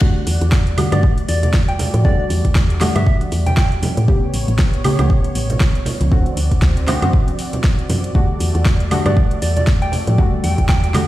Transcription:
0.01 E2 D3 G3 A3 F#4 D5, kick
0.27 E2, open hi-hat
0.41 E2, closed hi-hat
0.52 kick, snare
0.67 closed hi-hat
0.78 D3 G3 A3 F#4, open hi-hat, low conga, high woodblock
0.92 G2 D3 G3 A3 F#4 D5, closed hi-hat, high conga, high woodblock
1.03 kick
1.18 closed hi-hat
1.29 E2 D5, open hi-hat
1.43 D5, closed hi-hat, low conga
1.54 kick, snare
1.68 G5, closed hi-hat
1.79 open hi-hat, low conga
1.94 A2, closed hi-hat, high conga
2.04 E2 D3 G3 A3 F#4 D5, kick
2.19 D5
2.29 E2, open hi-hat, high conga
2.45 E2, kick, closed hi-hat
2.55 kick, snare
2.70 closed hi-hat
2.81 D3 G3 A3 F#4, snare, open hi-hat, low conga, high woodblock
2.95 G2 D3 G3 A3 F#4 E5, closed hi-hat, high conga, high woodblock
3.07 E5, kick
3.21 closed hi-hat, high conga
3.32 E2, open hi-hat
3.46 G5, closed hi-hat, low conga
3.57 G5, kick, snare
3.72 closed hi-hat
3.82 open hi-hat, high conga, low conga
3.97 A2, closed hi-hat
4.08 A1 C#3 A3 B3 G4 C#5, kick
4.34 A1, open hi-hat
4.48 A1, closed hi-hat
4.59 kick, snare
4.74 closed hi-hat
4.84 C#3 A3 B3 G4, open hi-hat, low conga, high woodblock
4.99 C#2 C#3 A3 B3 G4, closed hi-hat, high conga, high woodblock
5.10 kick
5.24 closed hi-hat
5.35 A1, open hi-hat
5.50 closed hi-hat, low conga
5.60 kick, snare
5.75 closed hi-hat
5.86 open hi-hat, low conga
6.01 C#2, closed hi-hat, high conga
6.11 D2 D3 A3 C4 F#4 D5, kick
6.26 closed hi-hat
6.36 D2, open hi-hat, high conga
6.52 D2, kick, closed hi-hat
6.62 kick, snare
6.77 closed hi-hat
6.87 D3 A3 C4 F#4, snare, open hi-hat, low conga, high woodblock
7.02 F#2 D3 A3 C4 F#4, closed hi-hat, high conga, high woodblock
7.13 kick
7.28 closed hi-hat, high conga
7.39 open hi-hat
7.53 closed hi-hat, low conga
7.64 kick, snare
7.79 closed hi-hat
7.90 F#2, open hi-hat, high conga, low conga
8.04 closed hi-hat
8.15 E2 D3 G3 A3 F#4, kick
8.40 E2, open hi-hat
8.55 E2, closed hi-hat
8.65 kick, snare
8.80 closed hi-hat
8.91 D3 G3 A3 F#4, open hi-hat, low conga, high woodblock
9.05 G2 D3 G3 A3 F#4 D5, closed hi-hat, high conga, high woodblock
9.17 kick
9.31 closed hi-hat
9.42 E2 D5, open hi-hat
9.57 D5, closed hi-hat, low conga
9.67 kick, snare
9.82 G5, closed hi-hat
9.92 open hi-hat, low conga
10.07 A2, closed hi-hat, high conga
10.18 E2 D3 G3 A3 F#4, kick
10.44 E2 G5, open hi-hat, high conga
10.58 E2, kick, closed hi-hat
10.69 G5, kick, snare
10.84 G5, closed hi-hat
10.94 D3 G3 A3 F#4, snare, open hi-hat, low conga, high woodblock

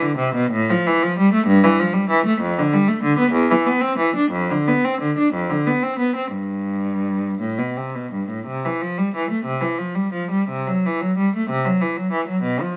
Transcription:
0.01 D3
0.18 C3
0.35 B2
0.51 A2
0.70 F3
0.87 E3
1.03 F3
1.19 G3
1.34 A3
1.47 G2
1.63 E3
1.79 F3
1.93 G3
2.10 E3
2.26 A3
2.41 F2
2.58 D3
2.73 G3
2.88 A3
3.04 D3
3.19 B3
3.32 E2
3.51 E3
3.66 B3
3.81 C4
3.98 E3
4.16 D4
4.31 F2
4.50 D3
4.67 B3
4.84 C4
5.01 D3
5.18 D4
5.33 F2
5.50 D3
5.67 B3
5.83 C4
5.99 B3
6.16 C4
6.33 G2
7.40 A2
7.58 B2
7.77 C3
7.95 B2
8.12 G2
8.29 A2
8.47 C3
8.65 E3
8.82 F3
8.98 G3
9.16 E3
9.31 A3
9.45 C3
9.60 E3
9.78 F3
9.95 G3
10.13 F3
10.31 G3
10.49 C3
10.67 F#3
10.86 E3
11.01 F#3
11.17 G3
11.36 A3
11.50 C3
11.65 F#3
11.81 E3
11.97 F#3
12.12 E3
12.28 F#3
12.42 B2
12.60 F3

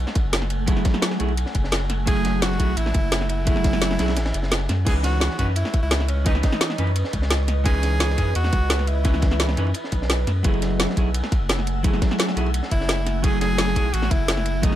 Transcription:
Already playing: A3 F#5 G#5
0.07 snare
0.15 kick, closed hi-hat, ride
0.25 F#1
0.33 snare, closed hi-hat, ride
0.42 snare
0.50 closed hi-hat, ride
0.66 F#3 A3 E4 G#4, kick, closed hi-hat, ride
0.77 snare
0.85 kick, snare, closed hi-hat, ride
0.94 snare
1.02 snare, closed hi-hat, ride
1.11 snare
1.19 B1 F#3 A3 E4 G#4, closed hi-hat, ride
1.28 ride
1.37 closed hi-hat, ride
1.46 snare
1.55 F#1, kick, closed hi-hat, ride
1.64 snare
1.72 snare, closed hi-hat, ride
1.89 snare, closed hi-hat, ride
2.06 F#3 A3 E4 G#4, kick, closed hi-hat, ride
2.16 ride
2.25 snare, closed hi-hat, ride
2.42 F#4, snare, closed hi-hat, ride
2.52 snare
2.59 B1 F#3 A3 E4 G#4, kick, closed hi-hat, ride
2.77 A1 E4, closed hi-hat, ride
2.86 snare
2.94 F#1, kick, closed hi-hat, ride
3.12 snare, closed hi-hat, ride
3.21 snare
3.29 E4, closed hi-hat, ride
3.45 F#3 A3 E4 G#4, kick, closed hi-hat, ride
3.56 snare
3.64 kick, snare, closed hi-hat, ride
3.73 snare
3.82 snare, closed hi-hat, ride
3.91 snare
3.99 B1 F#3 A3 E4 G#4, snare, closed hi-hat, ride
4.08 snare, ride
4.16 A1, snare, closed hi-hat, ride
4.26 snare, ride
4.34 F#1, closed hi-hat, ride
4.43 snare
4.51 snare, closed hi-hat, ride
4.69 F#2, snare, closed hi-hat, ride
4.85 C#2 E3 C#4 D#4 G#4 B4 D#5 C#6, kick, closed hi-hat, crash, ride
4.96 ride
5.03 F#4, snare, closed hi-hat, ride
5.20 snare, closed hi-hat, ride
5.30 snare
5.38 F#2 E3 C#4 D#4 F#4 B4, kick, closed hi-hat, ride
5.56 E4, closed hi-hat, ride
5.65 snare
5.73 kick, closed hi-hat, ride
5.83 C#2 E4
5.91 snare, closed hi-hat, ride
6.00 snare
6.08 C#4, closed hi-hat, ride
6.25 E3 C#4 D#4 B4, kick, closed hi-hat, ride
6.35 snare
6.43 D#4, kick, snare, closed hi-hat, ride
6.52 snare
6.61 snare, closed hi-hat, ride
6.69 snare
6.78 F#2 E3 C#4 D#4 B4, closed hi-hat, ride
6.87 ride
6.96 closed hi-hat, ride
7.04 snare
7.13 C#2, kick, closed hi-hat, ride
7.22 snare
7.30 snare, closed hi-hat, ride
7.48 snare, closed hi-hat, ride
7.64 E3 C#4 D#4 G#4 B4 B5, kick, closed hi-hat, ride
7.74 ride
7.83 snare, closed hi-hat, ride
8.00 snare, closed hi-hat, ride
8.10 snare
8.17 F#2 E3 C#4 D#4 B4, kick, closed hi-hat, ride
8.35 E2 F#4, closed hi-hat, ride
8.44 snare
8.53 C#2, kick, closed hi-hat, ride
8.70 snare, closed hi-hat, ride
8.79 snare
8.87 E4, closed hi-hat, ride
9.04 E3 C#4 B4 D#5, kick, closed hi-hat, ride
9.14 snare
9.22 kick, snare, closed hi-hat, ride
9.31 snare
9.40 snare, closed hi-hat, ride
9.48 snare
9.57 F#2 E3 C#4 D#4 B4, closed hi-hat, ride
9.67 ride
9.74 closed hi-hat, ride
9.84 snare
9.92 B1, kick, closed hi-hat, ride
10.02 snare
10.10 snare, closed hi-hat, ride
10.27 F#2, snare, closed hi-hat, ride
10.43 F#1 F#3 A3 E4 G#4 F#5 G#5 E6, kick, closed hi-hat, ride
10.54 ride
10.62 snare, closed hi-hat, ride
10.80 snare, closed hi-hat, ride
10.90 snare
10.96 B1 F#3 A3 E4 G#4, kick, closed hi-hat, ride
11.14 closed hi-hat, ride
11.23 snare
11.32 kick, closed hi-hat, ride
11.41 F#1
11.49 snare, closed hi-hat, ride
11.59 snare
11.67 closed hi-hat, ride
11.83 F#3 A3 E4 G#4, kick, closed hi-hat, ride
11.94 snare
12.02 kick, snare, closed hi-hat, ride
12.11 snare
12.18 snare, closed hi-hat, ride
12.28 snare
12.36 B1 F#3 A3 E4 G#4, closed hi-hat, ride
12.46 ride
12.54 closed hi-hat, ride
12.63 snare
12.71 F#1 E4, kick, closed hi-hat, ride
12.81 snare
12.89 snare, closed hi-hat, ride
13.06 snare, closed hi-hat, ride
13.22 F#3 A3 E4 G#4, kick, closed hi-hat, ride
13.33 ride
13.41 G#4, snare, closed hi-hat, ride
13.58 snare, closed hi-hat, ride
13.68 snare
13.76 B1 F#3 A3 E4 G#4, kick, closed hi-hat, ride
13.93 A1 F#4, closed hi-hat, ride
14.02 snare
14.11 F#1 E4, kick, closed hi-hat, ride
14.28 snare, closed hi-hat, ride
14.37 snare
14.45 closed hi-hat, ride
14.62 E3 F#3 A3 D#4 G#4, kick, closed hi-hat, ride
14.72 snare

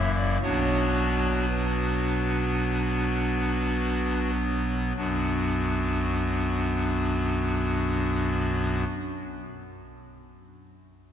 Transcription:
Already playing: F#1 F#2 F#3 A#3 E4 E5
0.16 D5
0.42 B1 B2 F#3 B3 D4 F#4 C#5
1.48 D4 F#4 B4
4.96 B1 F#2 F#3 B3 D4 F#4

